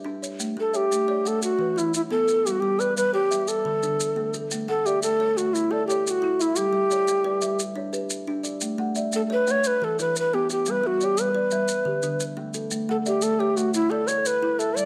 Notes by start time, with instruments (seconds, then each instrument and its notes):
Already playing: kalimba G4
0.04 kalimba D4, marimba D4
0.22 marimba C#5, maracas
0.40 marimba A3, maracas
0.57 kalimba A3, native american-style wooden flute A4
0.73 native american-style wooden flute G4, marimba C#5, kalimba E5, maracas
0.91 marimba A3, maracas
1.08 kalimba C#5, marimba D5
1.25 marimba A3, native american-style wooden flute A4, kalimba F#5, maracas
1.42 native american-style wooden flute F#4, maracas
1.59 kalimba E3, marimba B4
1.76 marimba E3, kalimba E4, native american-style wooden flute E4, maracas
1.94 native american-style wooden flute E4, maracas
2.11 kalimba B3, marimba B3, native american-style wooden flute A4
2.28 marimba A4, kalimba B4, maracas
2.46 marimba G3, native american-style wooden flute G4, maracas
2.51 native american-style wooden flute F#4
2.60 kalimba G3, native american-style wooden flute G4
2.79 native american-style wooden flute B4, marimba B4, kalimba D5, maracas
2.97 marimba G3, native american-style wooden flute B4, maracas
3.14 native american-style wooden flute G4, kalimba B4, marimba C#5
3.31 marimba G3, kalimba E5, maracas
3.48 native american-style wooden flute A4, maracas
3.65 kalimba D3, marimba A4
3.83 marimba D3, kalimba D4, maracas
4.00 maracas
4.16 kalimba A3, marimba A3
4.34 kalimba A4, maracas
4.51 marimba A3, maracas
4.68 kalimba A3, native american-style wooden flute A4, marimba F#5
4.86 native american-style wooden flute G4, marimba D5, kalimba E5, maracas
5.03 marimba A3, native american-style wooden flute A4, maracas
5.20 kalimba C#5, marimba E5
5.37 marimba A3, native american-style wooden flute F#4, maracas
5.54 native american-style wooden flute E4, maracas
5.71 kalimba E4, native american-style wooden flute A4, marimba D5
5.87 native american-style wooden flute G4, kalimba A4, marimba C#5, maracas
6.06 native american-style wooden flute G4, maracas
6.10 native american-style wooden flute F#4
6.22 kalimba E4, marimba E4
6.40 native american-style wooden flute E4, kalimba E5, maracas
6.56 marimba G3, native american-style wooden flute G4, maracas
6.73 kalimba G3, marimba E5
6.90 marimba C#5, kalimba D5, maracas
7.08 marimba G3, maracas
7.24 kalimba B4, marimba D5
7.42 marimba G3, kalimba E5, maracas
7.59 maracas
7.76 kalimba D4, marimba C#5
7.93 kalimba G4, marimba B4, maracas
8.10 maracas
8.27 kalimba D4, marimba D4
8.43 kalimba D5, maracas
8.61 marimba A3, maracas
8.78 kalimba A3, marimba F#5
8.95 marimba D5, kalimba E5, maracas
9.12 marimba A3, native american-style wooden flute A4, maracas
9.30 native american-style wooden flute B4, kalimba C#5, marimba E5
9.47 marimba A3, native american-style wooden flute C#5, kalimba F#5, maracas
9.64 native american-style wooden flute B4, maracas
9.82 kalimba E3, marimba A4, native american-style wooden flute A4
9.99 marimba E3, kalimba E4, native american-style wooden flute B4, maracas
10.16 native american-style wooden flute B4, maracas
10.34 kalimba B3, marimba B3, native american-style wooden flute G4
10.50 native american-style wooden flute G4, kalimba B4, maracas
10.66 marimba G3, maracas
10.70 native american-style wooden flute B4
10.84 kalimba G3, native american-style wooden flute F#4, marimba E5
11.01 native american-style wooden flute G4, marimba C#5, kalimba D5, maracas
11.18 marimba G3, native american-style wooden flute B4, maracas
11.35 kalimba B4, marimba D5
11.51 marimba G3, kalimba E5, maracas
11.68 maracas
11.85 kalimba D3, marimba G4
12.02 marimba D3, kalimba D4, maracas
12.20 maracas
12.37 kalimba A3, marimba A3
12.54 kalimba A4, maracas
12.71 marimba A3, maracas
12.89 kalimba A3, native american-style wooden flute A4, marimba F#5
13.06 native american-style wooden flute G4, marimba D5, kalimba E5, maracas
13.22 marimba A3, native american-style wooden flute A4, maracas
13.40 native american-style wooden flute G4, kalimba C#5, marimba E5
13.57 marimba A3, native american-style wooden flute F#4, kalimba F#5, maracas
13.74 native american-style wooden flute E4, maracas
13.90 kalimba E4, native american-style wooden flute A4, marimba D5
14.07 kalimba A4, native american-style wooden flute C#5, marimba C#5, maracas
14.26 native american-style wooden flute B4, maracas
14.42 kalimba E4, marimba E4
14.59 native american-style wooden flute A4, kalimba E5, maracas
14.76 marimba G3, native american-style wooden flute D5, maracas